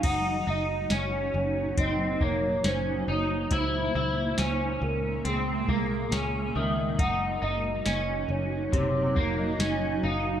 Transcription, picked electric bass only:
\new Staff \with { instrumentName = "Picked electric bass" } { \clef bass \time 4/4 \key ges \lydian \tempo 4 = 69 ges,,8 ges,,8 ges,,8 ges,,8 ges,,8 f,,8 ges,,8 ges,,8 | des,8 des,8 des,8 des,8 des,8 c,8 des,8 des,8 | ges,,8 ges,,8 ges,,8 ges,,8 ges,,8 f,,8 ges,,8 ges,,8 | }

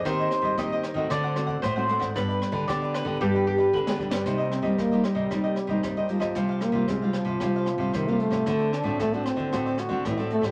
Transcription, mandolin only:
\new Staff \with { instrumentName = "Mandolin" } { \time 4/4 \key g \phrygian \tempo 4 = 114 c''4 ees''4 d''4 c''4 | b'4 d''8 b'8 g'8 g'8 b'4 | \key c \minor r1 | r1 |
r1 | }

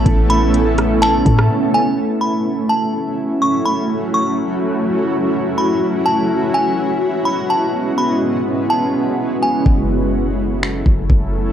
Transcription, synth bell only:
\new Staff \with { instrumentName = "Synth bell" } { \time 4/4 \key fis \minor \tempo 4 = 125 r8 b''8 r4 a''4. gis''8 | r8 b''4 a''4. cis'''8 b''8 | r8 cis'''8 r2 r8 b''8 | r8 a''4 gis''4. b''8 a''8 |
r8 b''8 r4 a''4. gis''8 | r1 | }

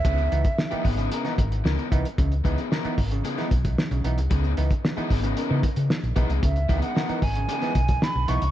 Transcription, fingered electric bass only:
\new Staff \with { instrumentName = "Fingered electric bass" } { \clef bass \time 4/4 \key cis \dorian \tempo 4 = 113 cis,8 cis,16 r8. gis,,8 r8 gis,,8 cis,16 r16 bis,,16 r16 | cis,8 cis,16 r8. gis,,8 r8 b,,8 r16 b,,16 b,,16 bis,,16 | cis,8 cis,16 r8. gis,,8 r16 cis16 r16 cis16 r16 ais,,16 b,,16 bis,,16 | cis,8 cis,16 r8. gis,,8 r8 b,,8 r16 b,,16 b,,16 bis,,16 | }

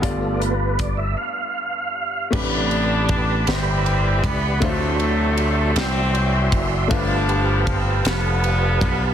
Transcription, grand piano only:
<<
  \new Staff \with { instrumentName = "Grand piano" } { \time 6/8 \key a \minor \tempo 4. = 52 <b f' g' d''>2. | <c a d' g' b'>2. | <a d' e' f' fis' c''>2. | <a d' f' g' b'>2. | }
  \new Staff \with { instrumentName = "Grand piano" } { \clef bass \time 6/8 \key a \minor g,4. r4. | a,4. r4. | d4. r4. | g,4. r4. | }
>>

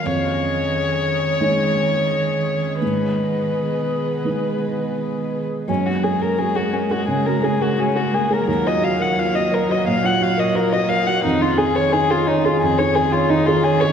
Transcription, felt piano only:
\new Staff \with { instrumentName = "Felt piano" } { \time 4/4 \key fis \major \tempo 4 = 86 eis,2 <gis dis' cis''>2 | gis,2 <gis dis' b'>2 | fis,16 fis'16 gis'16 ais'16 fis'16 gis'16 ais'16 gis'16 cis16 fis'16 gis'16 ais'16 fis'16 gis'16 ais'16 gis'16 | dis,16 eis'16 fis'16 ais'16 eis'16 fis'16 ais'16 fis'16 ais,16 eis'16 fis'16 ais'16 eis'16 fis'16 ais'16 fis'16 |
eis,16 dis'16 gis'16 cis''16 dis'16 gis'16 cis''16 gis'16 eis,16 dis'16 gis'16 cis''16 dis'16 gis'16 cis''16 gis'16 | }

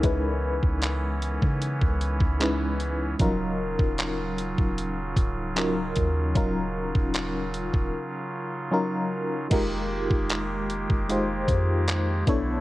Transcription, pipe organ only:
\new Staff \with { instrumentName = "Pipe organ" } { \time 4/4 \key f \dorian \tempo 4 = 76 <fes ces' des'>1 | <des ges f'>1~ | <des ges f'>1 | <ees aes bes g'>2.~ <ees aes bes g'>8 <d a d' e'>8 | }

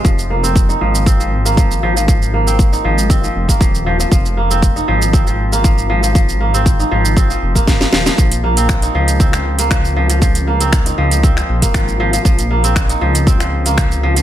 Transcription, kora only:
\new Staff \with { instrumentName = "Kora" } { \clef bass \time 4/4 \key f \minor \tempo 4 = 118 f16 r16 bes16 c'16 r16 ees'16 f16 r16 c'16 f16 r16 bes16 f16 r16 f16 f16 | f16 r16 bes16 c'16 r16 ees'16 f16 r16 c'16 f16 r16 bes16 f16 r16 f16 f16 | f16 r16 bes16 c'16 r16 ees'16 f16 r16 c'16 f16 r16 bes16 f16 r16 f16 f16 | f16 r16 bes16 c'16 r16 ees'16 f16 r16 c'16 f16 r16 bes16 f16 r16 f16 f16 |
f16 r16 bes16 c'16 r16 ees'16 f16 r16 c'16 f16 r16 bes16 f16 r16 f16 f16 | f16 r16 bes16 c'16 r16 ees'16 f16 r16 c'16 f16 r16 bes16 f16 r16 f16 f16 | f16 r16 bes16 c'16 r16 ees'16 f16 r16 c'16 f16 r16 bes16 f16 r16 f16 f16 | }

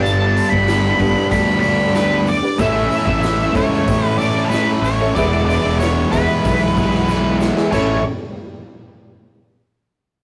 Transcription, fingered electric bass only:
\new Staff \with { instrumentName = "Fingered electric bass" } { \clef bass \time 4/4 \key a \major \tempo 4 = 94 g,,8. g,,8. g,,16 r16 d,2 | a,,8 r16 a,,8. cis,8 a,4. a,,8 | e,,8. e,,8. e,,16 r16 b,,2 | a,,8 r2. r8 | }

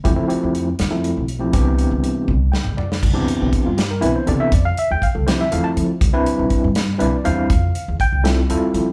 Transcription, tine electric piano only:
\new Staff \with { instrumentName = "Tine electric piano" } { \time 6/8 \key c \major \tempo 4. = 81 << { r2. | r2 g''8 d''8 | r4 r16 f'16 g'16 bes'16 b'16 c''16 d''16 e''16 | d''16 f''16 e''16 g''16 f''16 a'16 c''16 e''16 f''16 a''16 r8 |
r2 d''8 f''8~ | f''4 g''8 r4. | } \\ { <f a c' e' g'>16 <f a c' e' a'>16 <f a c' e' g'>8. r8 <f a c' e' a'>8. r16 <f a c' e' g'>16 | <e b c' d' g'>4. r4. | r16 <e b c' d' g'>4 r8. <e b c' d' e'>16 r16 <e b c' d' a'>8 | r4. <f a c' e' g'>16 r16 <f a c' e' a'>8. r16 |
r16 <g c' d' e' b'>4 r8. <g c' d' e' b'>16 r16 <g c' d' e' c''>8 | r4. <g c' e' f' a'>16 r16 <g c' e' f' a'>8. r16 | } >> }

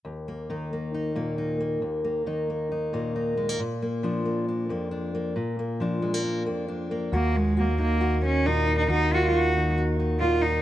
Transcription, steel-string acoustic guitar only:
\new Staff \with { instrumentName = "Steel-string acoustic guitar" } { \time 4/4 \key ees \minor \tempo 4 = 136 << { r8 bes8 ees'8 bes8 ees'8 bes8 ees'8 bes8 | r8 bes8 ees'8 bes8 ees'8 bes8 ees'8 aes16 bes16 | r8 bes8 d'8 bes8 d'8 bes8 d'8 bes8 | r8 bes8 d'8 aes16 bes16 d'8 bes8 d'8 bes8 |
ges'8 ees'8 ges'8 ees'8 ges'8 ees'8 bes8 ees'8 | ges'8 ees'8 ees'8 ees'8 ges'8 ees'8 bes8 ees'8 | } \\ { ees,4 ees4. bes,4. | ees,4 ees4. bes,4. | bes,4 f4. f,4. | bes,4 f4. f,4. |
ees,4. ees4. bes,4 | ees,4. ees4. bes,4 | } >> }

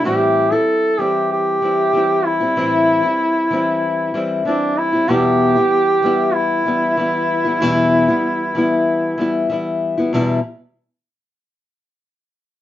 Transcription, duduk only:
\new Staff \with { instrumentName = "Duduk" } { \time 4/4 \key e \minor \tempo 4 = 95 g'8. a'8. g'8 g'4. e'8~ | e'2~ e'8 r8 d'8 e'8 | g'2 e'2~ | e'2. r4 |
r1 | }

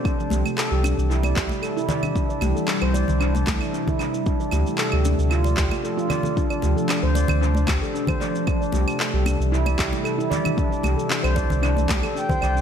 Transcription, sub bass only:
\new Staff \with { instrumentName = "Sub bass" } { \clef bass \time 4/4 \key c \mixolydian \tempo 4 = 114 r8 c,16 r8 c,8 c,8. c,16 r4 r16 | r8 c,16 r8 c,8 c,8. c,16 r4 r16 | r8 d,16 r8 d,8 d,8. d,16 r4 r16 | r8 d,16 r8 d,8 d,8. d,16 r4 r16 |
r8 c,16 r8 c,8 c,8. c,16 r4 r16 | r8 c,16 r8 c,8 c,8. c,16 r8. c,8 | }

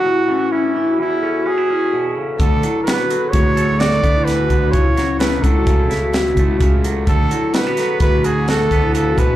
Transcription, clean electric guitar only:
\new Staff \with { instrumentName = "Clean electric guitar" } { \clef bass \time 5/4 \key d \lydian \tempo 4 = 128 << { r4 cis'4. cis'8 cis'16 e'16 cis'4. | r4 b4. a'8 fis'8 b4. | r4 a4. e'8 e'8 a4.~ | a4 a16 b4~ b16 fis'8 fis'8 b4. | } \\ { a,8 e4 e8 e,2 b,8 cis8 | d8 fis4 fis8 a,2 e8 d8 | cis8 fis4 fis8 cis2 cis8 fis8 | d8 fis4 fis8 a,2 cis8 b,8 | } >> }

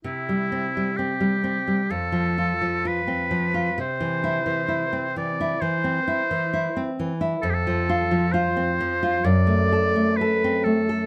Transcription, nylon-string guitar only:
\new Staff \with { instrumentName = "Nylon-string guitar" } { \time 4/4 \key c \major \tempo 4 = 65 c16 g16 c'16 g16 c'16 g16 c'16 g16 f,16 f16 f'16 f16 f'16 c'16 f16 f'16 | c16 e16 e'16 e16 e'16 c'16 e16 e'16 e16 c'16 e'16 e16 e'16 c'16 e16 e'16 | f,16 f16 f'16 f16 f'16 c'16 f16 f'16 fis,16 a16 a'16 a16 a'16 c'16 a16 a'16 | }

